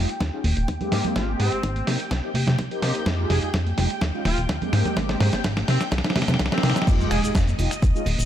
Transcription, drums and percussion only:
0.09 closed hi-hat, maracas
0.20 kick, snare, closed hi-hat
0.33 maracas
0.44 open hi-hat, high conga
0.57 closed hi-hat, maracas
0.68 kick, closed hi-hat
0.81 closed hi-hat, low conga, maracas
0.92 snare, open hi-hat
1.05 closed hi-hat, low conga, maracas
1.16 kick, snare, closed hi-hat, high conga, maracas
1.29 maracas
1.40 open hi-hat
1.52 closed hi-hat, maracas
1.63 kick, closed hi-hat
1.76 closed hi-hat, high conga, maracas
1.87 snare, open hi-hat
1.99 closed hi-hat, maracas
2.11 kick, snare, closed hi-hat
2.34 open hi-hat, high conga
2.47 snare, closed hi-hat, low conga, maracas
2.59 kick, closed hi-hat
2.71 closed hi-hat, maracas
2.82 snare, open hi-hat
2.95 closed hi-hat, maracas
3.06 kick, snare, closed hi-hat, high conga, maracas
3.19 maracas
3.30 snare, open hi-hat
3.42 closed hi-hat, maracas
3.54 kick, snare, closed hi-hat
3.66 closed hi-hat, high conga, maracas
3.78 snare, open hi-hat
3.90 closed hi-hat, maracas
4.01 kick, snare, closed hi-hat, maracas
4.15 maracas
4.25 snare, open hi-hat, high conga
4.38 closed hi-hat, maracas
4.49 kick, snare, closed hi-hat, maracas
4.62 closed hi-hat, low conga, maracas
4.73 snare, open hi-hat
4.85 closed hi-hat, low conga, maracas
4.96 kick, snare, closed hi-hat, high conga, maracas
5.09 snare, closed hi-hat, maracas
5.20 snare, open hi-hat
5.32 snare, closed hi-hat, maracas
5.44 kick, snare, closed hi-hat, maracas
5.57 snare, closed hi-hat, high conga, maracas
5.68 snare, open hi-hat
5.81 snare, closed hi-hat, maracas
5.91 kick, snare, closed hi-hat, maracas
5.98 snare
6.04 snare, closed hi-hat, maracas
6.10 snare
6.16 snare, open hi-hat, high conga
6.22 snare
6.28 snare, closed hi-hat, low conga, maracas
6.34 snare
6.39 kick, snare, closed hi-hat, maracas
6.46 snare
6.52 snare, closed hi-hat, maracas
6.58 snare
6.63 snare, open hi-hat
6.70 snare
6.76 snare, maracas
6.82 snare
6.87 kick, closed hi-hat, crash, high conga, cabasa, maracas
7.00 cabasa
7.11 finger snap, open hi-hat, maracas
7.24 closed hi-hat, cabasa, maracas
7.35 kick, snare, closed hi-hat, cabasa, maracas
7.47 closed hi-hat, high conga, cabasa
7.59 open hi-hat, maracas
7.71 finger snap, closed hi-hat, cabasa, maracas
7.82 kick, closed hi-hat, cabasa, maracas
7.96 cabasa
8.06 open hi-hat, high conga, maracas
8.19 closed hi-hat, cabasa, maracas

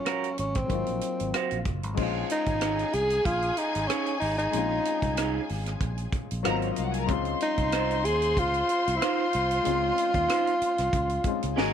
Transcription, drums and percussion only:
0.06 cross-stick, closed hi-hat
0.24 closed hi-hat
0.38 closed hi-hat
0.55 kick, cross-stick, closed hi-hat
0.70 kick, closed hi-hat
0.86 closed hi-hat
1.01 closed hi-hat
1.20 closed hi-hat
1.34 cross-stick, closed hi-hat
1.51 closed hi-hat
1.65 kick, closed hi-hat
1.83 closed hi-hat
1.97 kick, crash
2.30 closed hi-hat
2.46 kick, closed hi-hat
2.61 cross-stick, closed hi-hat
2.79 closed hi-hat
2.93 closed hi-hat
3.10 closed hi-hat
3.25 kick, closed hi-hat
3.42 closed hi-hat
3.57 closed hi-hat
3.75 closed hi-hat
3.90 cross-stick, closed hi-hat
4.06 closed hi-hat
4.21 open hi-hat
4.39 closed hi-hat
4.53 closed hi-hat
4.85 closed hi-hat
5.02 kick, closed hi-hat
5.17 cross-stick, closed hi-hat
5.49 open hi-hat
5.66 cross-stick, closed hi-hat
5.80 kick, closed hi-hat
5.98 closed hi-hat
6.12 kick, closed hi-hat
6.31 closed hi-hat
6.45 cross-stick, closed hi-hat
6.62 closed hi-hat
6.76 closed hi-hat
6.94 closed hi-hat
7.08 kick, closed hi-hat
7.25 closed hi-hat
7.40 closed hi-hat
7.58 kick, closed hi-hat
7.72 cross-stick, closed hi-hat
7.91 closed hi-hat
8.05 closed hi-hat
8.22 closed hi-hat
8.37 kick, closed hi-hat
8.54 closed hi-hat
8.69 closed hi-hat
8.87 closed hi-hat
9.02 cross-stick, closed hi-hat
9.33 closed hi-hat
9.51 closed hi-hat
9.65 closed hi-hat
9.98 closed hi-hat
10.14 kick, closed hi-hat
10.29 cross-stick, closed hi-hat
10.47 closed hi-hat
10.62 closed hi-hat
10.78 cross-stick, closed hi-hat
10.93 kick, closed hi-hat
11.09 closed hi-hat
11.24 kick, closed hi-hat
11.42 closed hi-hat
11.58 snare

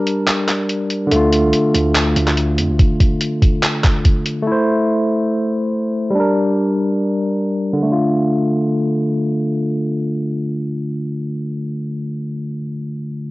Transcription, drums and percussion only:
0.07 closed hi-hat
0.28 clap, closed hi-hat
0.48 clap, closed hi-hat
0.69 closed hi-hat
0.90 closed hi-hat
1.11 closed hi-hat
1.33 closed hi-hat
1.53 closed hi-hat
1.75 closed hi-hat
1.95 clap, closed hi-hat
2.16 closed hi-hat
2.27 clap
2.37 closed hi-hat
2.58 closed hi-hat
2.79 kick, closed hi-hat
3.00 kick, closed hi-hat
3.21 closed hi-hat
3.42 kick, closed hi-hat
3.63 clap, closed hi-hat
3.84 kick, clap, closed hi-hat
4.05 kick, closed hi-hat
4.26 closed hi-hat

